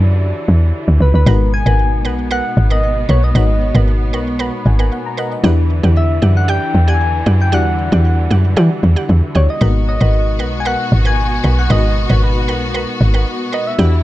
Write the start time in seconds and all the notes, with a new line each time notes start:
Already playing: F#2 D3 E3 D4 E4 F#4 G4 C#5 D5
0.48 E2
0.88 D2
1.00 C#2 B4
1.14 D2 B4
1.26 G#1 B2 G#3 B3 D#4 F#4 A#4 B4 F#5
1.54 G#5
1.66 G#1 A#4 B4 F#5
2.05 B1 A#4 B4 F#5
2.31 A#4 B4 F#5
2.57 G#1
2.70 A#4 B4 D#5 F#5
3.09 B1 A#4 B4 C#5 F#5
3.24 D#5
3.35 G#1 G#3 B3 D#4 F#4 A#4 B4 C#5 F#5
3.75 G#1 A#4 B4 F#5
4.13 B1 A#4 B4 F#5 C#6
4.39 A#4 B4 F#5 B5
4.66 G#1 F#5 G#5
4.79 A#4 B4 F#5 G#5
4.92 F#5
5.06 A#5
5.17 A#4 B4 D#5 F#5
5.32 D#5
5.43 E2 D3 E3 D4 E4 G4 B4 D5 F#5
5.83 E2 G4 D5 F#5
5.97 E5
6.22 F#2 G4 D5 F#5
6.37 F#5
6.48 G4 D5 G5
6.74 E2
6.88 G4 D5 F#5 G#5
7.26 F#2 G4 D5 F#5
7.42 G5
7.52 E2 G3 D4 E4 F#4 G4 D5 F#5
7.92 E2 G4 D5 F#5
8.31 F#2 G4 D5 F#5
8.57 E3 G4 D5 F#5
8.83 E2
8.96 G4 D5 F#5
9.09 E2
9.35 D2 G4 C#5 D5 F#5
9.50 D#5
9.61 G#1 B2 G#3 A#3 B3 D#4 F#4 A#4 B4 F#5
9.68 B3
9.89 D#5
10.00 G#1 A#4 B4 F#5
10.39 B1 A#4 B4 F#5
10.60 G#5
10.65 A#4 B4 F#5
10.92 G#1
11.05 A#4 B4 F#5 G#5
11.44 B1 A#4 B4 F#5
11.59 F#5
11.70 G#1 G#3 B3 D#4 F#4 A#4 B4 D#5 F#5
11.78 B4
12.09 G#1 A#4 B4 C#5 F#5
12.24 B4
12.48 B1 A#4 B4 F#5
12.74 A#4 B4 F#5
13.01 G#1
13.14 A#4 B4 F#5
13.52 A#4 B4 D#5 F#5
13.67 E5
13.78 E2 D3 E3 D4 E4 F#4 G4 B4 D5 F#5